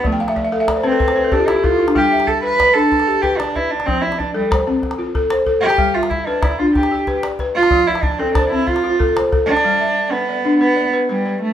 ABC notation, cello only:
X:1
M:12/8
L:1/8
Q:3/8=125
K:Gmix
V:1 name="Cello"
A,2 z3 C3 D E F z | G2 A B2 A3 G D E D | C E D G, z6 z G- | G F E D E F G3 z2 F- |
F E D C D E F3 z2 D- | D3 B,3 B,2 z G,2 A, |]